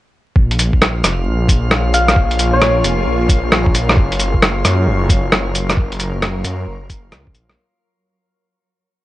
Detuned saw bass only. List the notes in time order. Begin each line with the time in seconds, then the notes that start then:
0.36 A#1
0.73 A#1
1.04 F1
1.26 A#1
2.16 A#1
2.54 A#1
2.84 F1
3.07 A#1
3.97 F#1
4.34 F#1
4.64 F#2
4.87 F#1
5.77 F#1
6.14 F#1
6.45 F#2
6.67 F#1
7.12 C#2
7.35 A#1